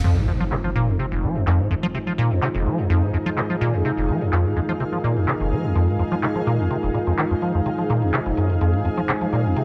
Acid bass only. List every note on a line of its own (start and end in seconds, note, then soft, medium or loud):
0.04 0.18 F2 loud
0.17 0.26 G#2 loud
0.28 0.32 F2 medium
0.40 0.44 F3 loud
0.52 0.56 C3 medium
0.64 0.70 F3 medium
0.75 0.89 A#2 medium
0.88 0.97 F2 loud
0.99 1.06 C3 medium
1.12 1.25 F1 medium
1.23 1.37 F3 medium
1.35 1.45 F2 loud
1.47 1.61 F2 medium
1.59 1.69 G#2 medium
1.71 1.75 F2 medium
1.83 1.87 F3 loud
1.94 1.99 C3 medium
2.07 2.13 F3 medium
2.18 2.32 A#2 medium
2.31 2.40 F2 loud
2.42 2.49 C3 medium
2.55 2.67 F1 medium
2.66 2.80 F3 medium
2.78 2.88 F2 loud
2.90 3.04 F2 loud
3.02 3.12 G#2 loud
3.13 3.18 F2 medium
3.26 3.30 F3 loud
3.37 3.41 C3 medium
3.50 3.56 F3 medium
3.61 3.75 A#2 loud
3.74 3.83 F2 loud
3.85 3.92 C3 medium
3.97 4.10 F1 medium
4.09 4.23 F3 medium
4.21 4.31 F2 loud
4.33 4.46 F2 loud
4.45 4.54 G#2 loud
4.56 4.60 F2 medium
4.69 4.73 F3 loud
4.80 4.84 C3 medium
4.93 4.99 F3 medium
5.04 5.18 A#2 loud
5.16 5.26 F2 loud
5.28 5.35 C3 medium
5.40 5.53 F1 medium
5.52 5.66 F3 medium
5.64 5.73 F2 loud
5.75 5.89 F2 loud
5.88 5.97 G#2 loud
5.99 6.03 F2 medium
6.12 6.15 F3 medium
6.23 6.27 C3 medium
6.35 6.42 F3 medium
6.47 6.61 A#2 loud
6.59 6.69 F2 loud
6.71 6.77 C3 medium
6.83 6.89 F1 medium
6.94 6.99 A#2 medium
7.07 7.13 F2 medium
7.18 7.25 D#3 medium
7.31 7.34 F2 medium
7.42 7.52 F3 medium
7.54 7.61 F2 medium
7.66 7.70 C3 medium
7.78 7.85 F3 medium
7.90 8.04 A#2 loud
8.02 8.12 F2 loud
8.14 8.20 C3 medium
8.26 8.32 F1 medium
8.37 8.51 F#2 medium
8.50 8.59 F2 loud
8.61 8.75 F2 loud
8.74 8.83 G#2 medium
8.85 8.89 F2 medium
8.97 9.01 F3 loud
9.09 9.13 C3 medium
9.21 9.27 F3 medium
9.33 9.47 A#2 loud
9.45 9.54 F2 loud
9.56 9.63 C3 medium